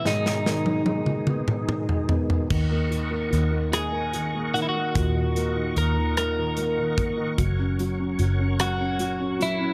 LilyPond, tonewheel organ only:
\new Staff \with { instrumentName = "Tonewheel organ" } { \time 6/8 \key gis \minor \tempo 4. = 49 << { <b, gis dis'>2. | \key dis \phrygian <dis'' fis''>2.~ | <dis'' fis''>2. | <cis'' fis''>2. | } \\ { <dis gis'>2. | <ais' cis'''>2.~ | <ais' cis'''>2.~ | <ais' cis'''>2. | } >> }